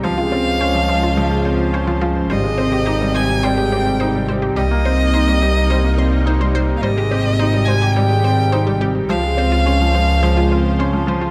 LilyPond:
<<
  \new Staff \with { instrumentName = "Violin" } { \time 4/4 \key aes \major \tempo 4 = 106 f''2.~ f''8 r8 | ees''4. aes''8 g''4. r8 | ees''2.~ ees''8 r16. f''32 | ees''4. aes''8 g''4. r8 |
f''2.~ f''8 r8 | }
  \new Staff \with { instrumentName = "Synth arpeggio sound" } { \time 4/4 \key aes \major c''16 f'16 f'16 r16 c''16 r16 c''16 f'16 f'16 r16 c''16 r16 c''16 f'16 f'16 r16 | c''16 r16 c''16 g'16 g'16 r16 c''16 r16 c''16 g'16 g'16 r16 c''16 r16 c''16 g'16 | g'16 r16 c''16 r16 c''16 g'16 g'16 r16 c''16 r16 c'''16 r16 c''16 c''16 c''16 r16 | c''16 g'16 g'16 r16 c''16 r16 c''16 g'16 g'16 r16 c''16 r16 c''16 g'16 g'16 r16 |
c''16 r16 c''16 f'16 f'16 r16 c''16 r16 c''16 f'16 f'16 r16 c''16 r16 c''16 f'16 | }
  \new Staff \with { instrumentName = "Analog synth pad" } { \time 4/4 \key aes \major << { <f' c''>1 | g'1 | <bes ees'>1 | g'1 |
<f' c''>1 | } \\ { des1 | c1~ | c1 | c1 |
des1 | } >> }
  \new Staff \with { instrumentName = "Felt piano" } { \clef bass \time 4/4 \key aes \major f16 aes16 c'16 r16 des'16 f16 f16 r16 f16 aes16 c'16 r16 des'16 f16 f16 r16 | g16 aes16 c'16 r16 ees'16 g16 g16 r16 g16 aes16 c'16 r16 ees'16 g16 g16 r16 | g16 bes16 c'16 r16 ees'16 g16 g16 r16 g16 bes16 c'16 r16 ees'16 g16 g16 r16 | g16 aes16 c'16 r16 ees'16 g16 g16 r16 g16 aes16 c'16 r16 ees'16 g16 g16 r16 |
f16 aes16 c'16 r16 des'16 f16 f16 r16 f16 aes16 c'16 r16 des'16 f16 f16 r16 | }
  \new Staff \with { instrumentName = "Double bass section" } { \clef bass \time 4/4 \key aes \major des,1 | aes,,1 | c,1 | aes,,1 |
des,1 | }
>>